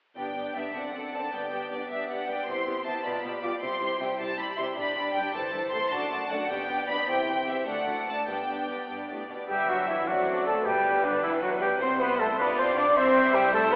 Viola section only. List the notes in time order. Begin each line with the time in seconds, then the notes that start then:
0.16 B3 D4
0.36 B3 D4
0.55 B3 D4
0.74 C4 D4
0.93 C4 D4
1.12 C4 D4
1.32 B3 D4
1.51 B3 D4
1.70 B3 D4
1.89 B3 D4
2.08 B3 D4
2.27 B3 D4
2.47 B3 E4
2.67 B3 E4
2.85 B3 E4
3.04 B3 F4
3.24 B3 F4
3.42 B3 F4
3.61 G3 E4
3.80 G3 E4
4.00 G3 E4
4.19 G3 E4
4.37 G3 E4
4.57 G3 E4
4.76 G3 D4
4.96 G3 D4
5.15 G3 D4
5.34 E3 E4
5.53 E3 E4
5.72 E3 E4
5.91 A3 D4
6.10 A3 D4
6.30 A3 D4
6.50 B3 D4
6.68 B3 D4
6.88 B3 D4
7.08 C4 G4
7.27 C4 G4
7.47 C4 G4
7.67 A3 D4
7.87 A3 D4
8.07 A3 D4
8.27 B3 D4
8.48 B3 D4
8.69 B3 D4
8.89 B3 D4
9.09 B3 D4
9.29 B3 D4
9.49 E5
10.08 D5
10.66 B4
11.81 C5
12.39 D5
12.97 E5
13.54 C5